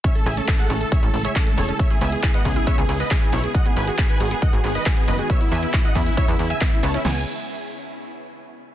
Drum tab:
CC |----------------|----------------|----------------|----------------|
HH |xxoxxxoxxxoxxxox|xxoxxxoxxxoxxxox|xxoxxxoxxxoxxxox|xxoxxxoxxxoxxxox|
TB |x-xxx-xxx-xxxxxx|x-xxx-xxx-xxxxxx|x-xxx-xxx-xxxxxx|x-xxx-xxx-xxxxxx|
CP |----x-------x---|----x-------x---|----x-------x---|----x-------x---|
SD |----------------|----------------|----------------|----------------|
BD |o---o---o---o---|o---o-o-o---o---|o---o---o---o---|o---o-o-o---o---|

CC |x---------------|
HH |----------------|
TB |----------------|
CP |----------------|
SD |o---------------|
BD |----------------|